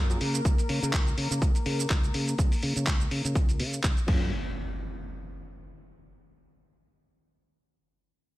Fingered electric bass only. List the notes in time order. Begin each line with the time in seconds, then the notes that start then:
Already playing: F#2
0.21 C#3
0.45 C#2
0.69 C#3
0.83 C#3
0.93 C#2
1.18 C#3
1.31 C#3
1.42 C#2
1.66 C#3
1.90 C#2
2.14 C#3
2.39 C#2
2.63 C#3
2.76 C#3
2.87 C#2
3.11 C#3
3.25 C#3
3.36 C#2
3.60 C#3
3.84 C#2
4.08 F#2